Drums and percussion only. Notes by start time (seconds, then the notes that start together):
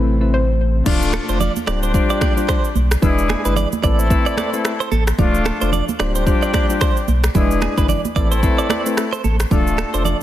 0.86 kick, crash, low conga, shaker
1.02 shaker
1.13 finger snap, cross-stick, high conga, shaker
1.29 shaker
1.40 low conga, shaker
1.56 high conga, shaker
1.67 finger snap, cross-stick, high conga, shaker
1.83 shaker
1.94 kick, shaker
2.10 shaker
2.21 finger snap, kick, cross-stick, high conga, shaker
2.37 shaker
2.49 finger snap, kick, cross-stick, shaker
2.64 shaker
2.75 high conga, shaker
2.91 finger snap, cross-stick, shaker
3.03 kick, low conga, shaker
3.18 shaker
3.29 finger snap, cross-stick, high conga, shaker
3.45 shaker
3.56 low conga, shaker
3.72 high conga, shaker
3.83 kick, high conga, shaker
3.99 shaker
4.10 kick, shaker
4.26 shaker
4.37 finger snap, cross-stick, high conga, shaker
4.54 shaker
4.65 finger snap, cross-stick, shaker
4.81 shaker
4.92 high conga, shaker
5.07 finger snap, cross-stick, shaker
5.19 kick, low conga, shaker
5.34 shaker
5.45 finger snap, cross-stick, high conga, shaker
5.61 shaker
5.72 low conga, shaker
5.89 high conga, shaker
6.00 finger snap, cross-stick, high conga, shaker
6.15 shaker
6.27 kick, shaker
6.42 shaker
6.53 finger snap, kick, cross-stick, high conga, shaker
6.70 shaker
6.81 finger snap, kick, cross-stick, shaker
6.97 shaker
7.08 high conga, shaker
7.24 finger snap, cross-stick, shaker
7.35 kick, low conga, shaker
7.51 shaker
7.62 finger snap, cross-stick, high conga, shaker
7.78 kick, shaker
7.88 low conga, shaker
8.05 high conga, shaker
8.16 kick, high conga, low conga, shaker
8.32 shaker
8.43 kick, shaker
8.59 shaker
8.69 finger snap, cross-stick, high conga, shaker
8.86 shaker
8.97 finger snap, cross-stick, shaker
9.13 shaker
9.24 high conga, shaker
9.40 finger snap, cross-stick, shaker
9.51 kick, low conga, shaker
9.67 shaker
9.78 finger snap, cross-stick, high conga, shaker
9.94 shaker
10.05 low conga, shaker